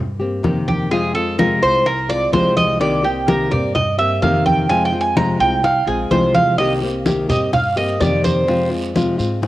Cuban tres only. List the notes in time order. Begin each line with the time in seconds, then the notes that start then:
0.68 G4
0.91 G#4
1.15 A4
1.39 A#4
1.63 C5
1.86 A#4
2.09 D5
2.33 C5
2.57 D#5
2.81 D5
3.04 G4
3.28 A#4
3.51 D5
3.75 D#5
3.98 E5
4.22 F5
4.46 G5
4.70 G#5
4.85 G5
5.01 G#5
5.17 A#5
5.40 G5
5.64 F5
5.88 G#4
6.11 C5
6.35 F5
6.58 D#5
7.29 D#5
7.53 F5
7.77 D#5
8.00 D5
8.24 C5